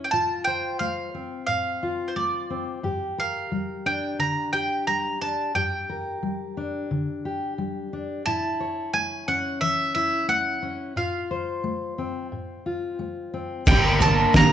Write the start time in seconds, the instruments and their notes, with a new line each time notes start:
Already playing: steel-string acoustic guitar E4
0.04 mandolin G5
0.11 steel-string acoustic guitar A2 F4, mandolin A5
0.44 steel-string acoustic guitar C5, mandolin G5
0.79 steel-string acoustic guitar A3, mandolin F5
1.14 steel-string acoustic guitar C4
1.47 steel-string acoustic guitar A2, mandolin F5
1.83 steel-string acoustic guitar F4
2.08 mandolin C5
2.16 steel-string acoustic guitar A3, mandolin D5
2.50 steel-string acoustic guitar C4
2.83 steel-string acoustic guitar G2 G4
3.18 steel-string acoustic guitar A#4, mandolin F5
3.52 steel-string acoustic guitar G3
3.86 steel-string acoustic guitar D4, mandolin G5
4.19 steel-string acoustic guitar D3, mandolin A#5
4.53 steel-string acoustic guitar G4, mandolin G5
4.87 steel-string acoustic guitar G3, mandolin A#5
5.21 steel-string acoustic guitar D4, mandolin A5
5.55 steel-string acoustic guitar G2 G4, mandolin G5
5.90 steel-string acoustic guitar A#4
6.23 steel-string acoustic guitar G3
6.57 steel-string acoustic guitar D4
6.91 steel-string acoustic guitar D3
7.25 steel-string acoustic guitar G4
7.58 steel-string acoustic guitar G3
7.93 steel-string acoustic guitar D4
8.26 steel-string acoustic guitar A2 E4, mandolin A5
8.60 steel-string acoustic guitar C#5
8.93 steel-string acoustic guitar A3, mandolin G#5
9.28 steel-string acoustic guitar C#4, mandolin F#5
9.61 steel-string acoustic guitar E3, mandolin E5
9.95 steel-string acoustic guitar E4, mandolin E5
10.28 steel-string acoustic guitar A3, mandolin F#5
10.62 steel-string acoustic guitar C#4
10.96 steel-string acoustic guitar A2 F4, mandolin F5
11.31 steel-string acoustic guitar C5
11.64 steel-string acoustic guitar A3
11.98 steel-string acoustic guitar C4
12.32 steel-string acoustic guitar A2
12.66 steel-string acoustic guitar F4
12.99 steel-string acoustic guitar A3
13.34 steel-string acoustic guitar C4
13.66 fingered electric bass G1, twelve-string acoustic guitar G2 D3 G3 A#3 D4 A#4, french horn A#3, upright piano G4, mandolin G5, kick, floor tom, crash, shaker
14.00 twelve-string acoustic guitar G3 A#3 D4 A#4, upright piano A#4, mandolin A5, floor tom, shaker
14.17 shaker
14.33 twelve-string acoustic guitar G2 D3 G3 A#3 D4 A#4, fingered electric bass G2, upright piano G4, mandolin A#5, kick, snare, shaker